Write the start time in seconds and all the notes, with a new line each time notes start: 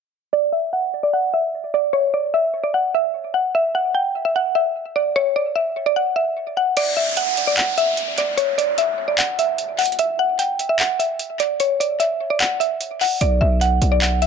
0.33 D5
0.52 E5
0.73 F#5
1.03 D5
1.13 F#5
1.34 E5
1.74 D5
1.93 C#5
2.14 D5
2.34 E5
2.63 D5
2.74 F#5
2.94 E5
3.34 F#5
3.55 E5
3.75 F#5
3.94 G5
4.25 E5
4.36 F#5
4.55 E5
4.96 D5
5.16 C#5
5.36 D5
5.55 E5
5.86 D5
5.96 F#5
6.16 E5
6.57 F#5
6.77 D5, closed hi-hat, crash, downlifter
6.97 E5
7.17 F#5, closed hi-hat
7.37 closed hi-hat
7.47 D5
7.57 F#5, clap, closed hi-hat
7.78 E5, closed hi-hat
7.97 closed hi-hat
8.18 D5, closed hi-hat
8.37 C#5, closed hi-hat
8.58 D5, closed hi-hat
8.78 E5, closed hi-hat
9.08 D5
9.18 F#5, clap, closed hi-hat
9.39 E5, closed hi-hat
9.58 closed hi-hat
9.78 F#5, closed hi-hat, open hi-hat
9.85 closed hi-hat
9.92 closed hi-hat
9.99 E5, closed hi-hat
10.19 F#5
10.39 G5, closed hi-hat
10.59 closed hi-hat
10.69 E5
10.79 F#5, clap, closed hi-hat
10.99 E5, closed hi-hat
11.19 closed hi-hat
11.40 D5, closed hi-hat
11.60 C#5, closed hi-hat
11.80 D5, closed hi-hat
12.00 E5, closed hi-hat
12.30 D5
12.40 F#5, clap, closed hi-hat
12.60 E5, closed hi-hat
12.81 closed hi-hat
13.01 F#5, open hi-hat
13.21 B1 D5, closed hi-hat
13.41 B1 E5
13.61 F#5, closed hi-hat
13.82 B1, closed hi-hat
13.92 D5
14.02 F#5, clap, closed hi-hat
14.22 E5, closed hi-hat